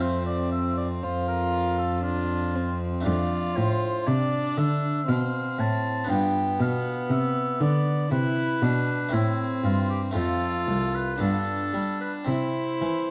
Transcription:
Already playing: F2 A3 C4
0.00 C4 F4 C5
0.26 D5
0.52 E5
0.77 D5
1.02 F4 C5
1.28 A#4
1.78 A4
2.03 D4 F4
2.55 C4
3.01 A3 D4 F4 D5
3.05 F2 F4
3.56 A2 C5
4.06 C3 D4 D5
4.58 D3 E5
5.08 B2 C4 F5
5.59 A2 A5
6.04 B3 D4 F4
6.09 G2 B3 G5
6.60 B2 F5
7.10 C3 E5
7.61 D3 D5
8.11 C3 E4 B4
8.62 B2 D4
9.09 A3 C4 E4
9.13 A2 C4 E4
9.64 G2 F4
9.90 G4
10.11 A3 C4 F4
10.15 F2 F4 A4
10.67 C2
10.94 B4
11.18 G2 B3 D4 F4 A4
11.73 G3
12.01 B4
12.24 C3 C4 E4 C5
12.29 E4
12.82 E3

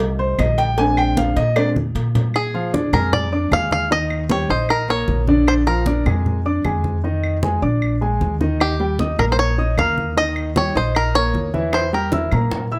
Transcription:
Already playing: C2 G3 A3 D#4
0.00 cowbell, high conga
0.19 C5, high conga
0.38 A#1 D#5, cowbell, high conga, claves
0.58 G5, cowbell
0.78 G#3 C4 D4 G#5, cowbell, high conga
0.97 G5, high conga, claves
1.17 F5, cowbell, high conga
1.36 A#2 D#5, cowbell, high conga
1.56 G#3 C4 D4 D5, cowbell, high conga, claves
1.76 high conga
1.95 A#2, cowbell
2.15 cowbell, low conga
2.34 G#4, high conga, claves
2.54 F3 F4 F5, high conga
2.73 D4 D5 D6, high conga
2.93 F2 G#3 G#4 A#4 G#5, low conga, claves
3.13 D5, high conga, low conga
3.32 D4 D5 D6, high conga
3.51 D#2 G#3 G#4 F5 G#5, high conga, claves
3.71 F5, high conga
3.90 D#3 D#4 D#5, high conga
4.10 high conga, claves
4.30 G3 G4 C#5 G5, high conga
4.49 A#1 D#4 C5 D#5 D#6, high conga
4.69 A#4, high conga, claves
4.88 A#3 A#4 C#5 A#5, high conga
5.08 A#1, high conga
5.27 D3 D4 D5, high conga
5.47 C5, high conga, claves
5.67 F3 F4 A#4 F5, high conga
5.86 D4 D5 D6, high conga
6.06 F2 G#3 G#4 G#5, low conga, claves
6.26 high conga, low conga
6.45 D4 D5 D6, high conga
6.64 F2 G#3 G#4 G#5, high conga, claves
6.84 high conga
7.04 D#3 D#4 D#5, high conga
7.24 high conga, claves
7.43 G#3 G#4 G#5, high conga
7.62 A#1 D4 D5 D6, high conga
7.82 high conga, claves
8.01 G#3 G#4 G#5, high conga
8.21 D#2, high conga
8.41 D#3 D#4 D#5, high conga
8.60 G4, high conga, claves
8.80 G3 G4 G5, high conga
8.99 D#4 D#5 D#6, high conga
9.19 A#1 A#3 A#4 A#5, low conga, claves
9.32 C5
9.39 C#5
9.58 D#4 D#5 D#6, high conga
9.77 D#2 A#3 A#4 F5 A#5, high conga, claves
9.98 high conga
10.17 D#3 D#4 D#5, high conga
10.36 high conga, claves
10.56 G3 G4 C#5 G5, high conga
10.75 A#1 D#4 C5 D#5 D#6, high conga
10.95 A#4, high conga, claves
11.15 A#3 A#4 C#5 A#5, high conga
11.34 E2, high conga
11.54 E3 E4 E5, high conga
11.73 C5, high bongo, high conga, claves
11.93 G3 G4 A#4 G5, high conga
12.12 E4 E5 E6, high bongo, high conga
12.31 A#2 A#3 A#4 A#5, low conga, claves
12.52 high bongo, high conga, low conga
12.71 E4 E5 E6, high conga

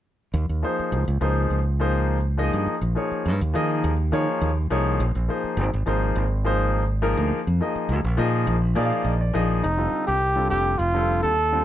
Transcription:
0.34 D#2
0.49 D#2
0.62 F3 A#3 D#4 G#4 C5
0.79 muted fingered electric bass stroke
0.92 C#2
1.08 C#2
1.21 C#2 F3 A#3 D#4 G#4 C5
1.50 C#2
1.80 F3 A#3 D#4 G#4 C5
2.37 F3 A#3 D#4 G#4 D#5
2.53 G2
2.67 muted fingered electric bass stroke
2.82 A#1
2.95 F3 A#3 D#4 G#4 C#5
3.12 muted fingered electric bass stroke
3.26 G2
3.41 D#2
3.54 D#3 F3 A#3 D#4 G#4 D#5
3.84 D#2
4.12 D#3 F3 A#3 D#4 G#4 C#5
4.41 D#2
4.70 C2 F3 A#3 D#4 G#4 C#5
5.00 A#1
5.15 A#1
5.29 F3 A#3 D#4 G#4 C5
5.44 muted fingered electric bass stroke
5.57 G#1
5.74 G#1
5.86 G#1 F3 A#3 D#4 G#4 C5
6.16 G#1
6.44 F3 A#3 D#4 G#4 C5
7.02 F3 A#3 D#4 G#4 A#4
7.17 D2
7.32 muted fingered electric bass stroke
7.47 F2
7.60 F3 A#3 D#4 G#4 D#5
7.75 muted fingered electric bass stroke
7.89 D2
8.04 A#1
8.17 A#2 F3 A#3 D#4 G#4 D#5
8.47 A#1
8.75 A#2 F3 A#3 D#4 G#4 D5 G#5
8.86 F5
9.04 A#1 D#5
9.21 D5
9.33 A#1 F3 A#3 D#4 G#4 D#5
9.63 F1 D#4
9.77 D3 G3 C4 F4 A4
9.92 muted fingered electric bass stroke
10.07 C2 G4
10.36 D3 G3 C4 F4 A4
10.50 F1 G4
10.78 F1 F4
10.94 D3 G3 C4 F4 A4
11.23 D#2 A4
11.52 D3 G3 C4 F4 A4

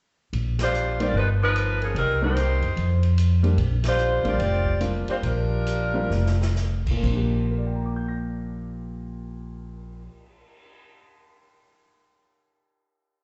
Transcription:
0.33 A#1, ride
0.59 G3 D4 F4 C5, snare, ride
0.74 hi-hat pedal
1.00 G3 A#3 B3 C4 D#4 F4 G4 D5, ride
1.14 G1 F3 A#3 D#4 B4
1.42 F3 D#4 A#4 B4
1.56 hi-hat pedal, ride
1.82 F3 A#3 C#4 G#4, ride
1.95 C2 G3 C4 D#4 A#4, ride
2.22 G3 A#3 C4 D4 D#4 G4 C5
2.37 hi-hat pedal, ride
2.62 F#2, ride
2.76 F2, ride
3.03 ride
3.18 hi-hat pedal, ride
3.43 G3 A#3 C4 D4 G4, ride
3.57 A#1, ride
3.83 C5, snare, ride
3.88 G3 D4 F4
3.98 hi-hat pedal
4.24 A1 G3 A#3 C4 D4 F4 G4 D5, ride
4.38 F1, ride
4.66 kick
4.80 G3 A#3 C4 D4 F4, hi-hat pedal, ride
5.07 G3 D4 F4 C5, muted upright bass stroke, ride
5.23 A#1 G3 D4 F4 A#4, ride
5.67 hi-hat pedal, ride
5.94 G3 A#3 C4 D4 F4
6.10 F1, snare
6.26 snare
6.42 snare
6.56 snare, hi-hat pedal
6.86 kick, crash
6.91 A#2
6.97 A#3
7.03 A#1 C4, kick, crash
7.10 D4
7.16 G4
7.34 cymbal swell
7.51 A#4
7.58 D5
7.67 G5
7.75 A#5
7.86 D6
7.96 G6
8.08 A#6

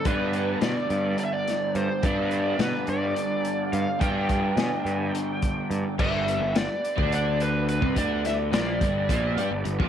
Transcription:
Already playing: B3 D4 G4 A4
0.05 G2 D3 G3 B3 D4 B4, kick, closed hi-hat
0.33 closed hi-hat
0.61 B2 D5, snare, closed hi-hat
0.90 G2, closed hi-hat
1.18 D5, closed hi-hat
1.25 E5
1.33 D5
1.47 snare, closed hi-hat
1.75 G2 C5, closed hi-hat
2.03 G2 D3 G3 B3 D4 D5, kick, closed hi-hat
2.31 closed hi-hat
2.59 B2 B4, snare, closed hi-hat
2.87 G2 D5, closed hi-hat
3.16 closed hi-hat
3.45 closed hi-hat
3.73 G2 F5, closed hi-hat
3.99 G2 D3 G3 B3 D4 G5, kick, closed hi-hat
4.29 kick, closed hi-hat
4.57 B2, snare, closed hi-hat
4.61 G#5
4.77 G5
4.85 G2, closed hi-hat
4.94 G#5
5.10 G5
5.15 closed hi-hat
5.42 kick, closed hi-hat
5.71 G2, closed hi-hat
5.98 G1 G2 G3 B3 D4 G4 B4 E5, kick, crash
6.28 closed hi-hat
6.40 G1 G2
6.55 D5, snare, closed hi-hat
6.85 closed hi-hat
6.96 D2 D3 D4, kick
7.12 D5, closed hi-hat
7.40 B4, closed hi-hat
7.69 B4, closed hi-hat
7.82 C2 C3 C4, kick
7.96 D2 D3 D4 D5, kick, closed hi-hat
8.25 E5, snare, closed hi-hat
8.52 A#1 A#2 A#3 D5, snare, closed hi-hat
8.81 G1 G2 G3, kick, closed hi-hat
9.09 A#1 A#2 A#3, kick, closed hi-hat
9.37 G2 G3 G4, closed hi-hat
9.51 G1 G2
9.65 G1 G2, closed hi-hat
9.79 A#1 A#2 A#3, kick

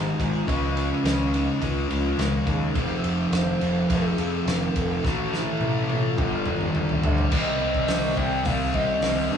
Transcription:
Already playing: G#1 G#2 D#3 G#3 B3 D#4 G4 G#4
0.19 G#1 G#3 B3 D#4 F4 G#4, kick, ride
0.33 G#3 B3 D#4 G#4
0.46 C#2 C#3 F3 G#3 C#4 F4, kick, ride
0.77 ride
0.91 G#3 C#4 F4
1.04 C#2 C#3 F3 G#3 C#4 F4, snare, ride
1.08 C#4
1.33 F3 G#3 C#4 D#4 F4, ride
1.47 muted clean electric guitar stroke
1.60 C#2 C#3 G#3, kick, ride
1.64 C#4 F4
1.76 muted clean electric guitar stroke
1.89 C#2 F3 G#3 C#4 F4, ride
2.04 G#3 C#4 F4
2.17 C#2 C#3 F3 G#3 C#4 F4, snare, ride
2.21 A#4
2.46 D#2 F3 G#3 C#4 F4, kick, ride
2.50 G#4
2.60 G#3 C#4 F4
2.73 F1 F2 C3, kick, ride
2.77 F3
3.03 F1, ride
3.32 F1 C5, snare, ride
3.61 F1 F2 C3 F3, ride
3.89 F1 F2 C3 G#4, kick, ride
3.93 F3
4.17 F2, ride
4.46 F1, snare, ride
4.50 A#4
4.76 F1 A4, kick, ride
5.02 A1 A2 E3 A3 F#4, kick, snare
5.07 A3
5.34 E4, snare
5.60 A1, high tom
5.87 E3 A3, high tom
5.91 A2 F4
6.16 G1 G2 D3 G3, kick, mid tom
6.21 G3
6.33 mid tom
6.46 G1, mid tom
6.61 mid tom
6.74 G1, mid tom
6.89 floor tom
7.03 D2 G2 D3 G3, floor tom
7.18 floor tom
7.29 C2 C3 G3 C4, kick, crash
7.37 D#5
7.61 C2
7.75 kick
7.88 C2, snare, open hi-hat
8.17 C2 G5, kick
8.44 C2 C3 G3 C4 F5, kick, open hi-hat
8.72 C2 G3 C4 D#5, kick
8.76 C3
9.01 C2 C3 G3 C4, snare, open hi-hat
9.31 G2

